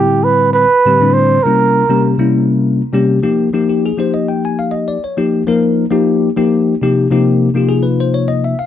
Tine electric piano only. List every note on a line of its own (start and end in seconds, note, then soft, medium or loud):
0.00 0.64 A2 medium
0.00 0.64 D3 medium
0.00 0.64 G3 medium
0.00 0.64 C4 medium
0.00 0.65 E4 medium
0.85 0.98 A2 medium
0.85 0.97 D3 medium
0.85 0.98 G3 medium
0.85 0.98 C4 medium
0.85 0.98 G4 medium
1.00 1.37 A2 medium
1.00 1.37 D3 medium
1.00 1.37 G3 medium
1.00 1.37 C4 medium
1.00 1.38 D4 medium
1.45 1.82 C3 medium
1.45 1.82 G3 medium
1.45 1.82 A#3 medium
1.45 1.82 C#4 medium
1.45 1.83 E4 medium
1.89 2.14 C3 medium
1.89 2.14 G3 medium
1.89 2.14 A#3 medium
1.89 2.14 C#4 medium
1.89 2.14 G4 medium
2.18 2.80 C3 medium
2.18 2.80 G3 medium
2.18 2.81 A#3 medium
2.18 2.81 C#4 medium
2.18 2.81 E4 medium
2.93 3.18 C3 medium
2.93 3.18 G3 medium
2.93 3.18 A#3 medium
2.93 3.18 C#4 medium
2.93 3.19 G4 medium
3.23 3.48 F3 medium
3.23 3.48 A#3 medium
3.23 3.48 D#4 medium
3.23 3.48 G4 medium
3.53 3.90 F3 medium
3.53 3.90 A#3 medium
3.53 3.90 D#4 medium
3.53 3.68 G4 medium
3.69 3.83 G4 medium
3.86 3.99 G#4 medium
3.97 4.96 F3 medium
3.97 4.96 A#3 medium
3.97 4.97 D#4 soft
3.97 4.97 G4 medium
3.97 4.14 C5 medium
4.14 4.28 D#5 medium
4.29 4.43 G5 medium
4.45 4.58 G#5 medium
4.59 4.73 F5 medium
4.71 4.87 D#5 medium
4.88 5.02 D5 medium
5.04 5.18 C#5 medium
5.17 5.42 F3 medium
5.17 5.42 A#3 medium
5.17 5.42 D#4 medium
5.17 5.42 G4 medium
5.47 5.84 F3 medium
5.47 5.84 A#3 medium
5.47 5.84 D#4 medium
5.47 5.85 A#4 medium
5.90 6.28 F3 medium
5.90 6.28 A#3 medium
5.90 6.28 D#4 medium
5.90 6.29 G4 loud
6.36 6.73 F3 medium
6.36 6.74 A#3 medium
6.36 6.74 D#4 medium
6.36 6.74 G4 loud
6.81 7.06 C3 medium
6.81 7.06 F3 medium
6.81 7.07 A#3 medium
6.81 7.06 D#4 medium
6.81 7.07 G4 medium
7.11 7.48 C3 medium
7.11 7.48 F3 medium
7.11 7.48 A#3 medium
7.11 7.48 D#4 medium
7.11 7.48 G4 medium
7.54 8.53 C3 medium
7.54 8.53 F3 medium
7.54 8.53 A#3 medium
7.54 8.53 D#4 medium
7.54 8.54 F4 medium
7.54 7.71 G4 medium
7.69 7.84 G#4 medium
7.83 7.98 B4 medium
8.00 8.15 C5 medium
8.14 8.29 C#5 medium
8.28 8.43 D#5 medium
8.44 8.59 E5 medium
8.59 8.66 F5 medium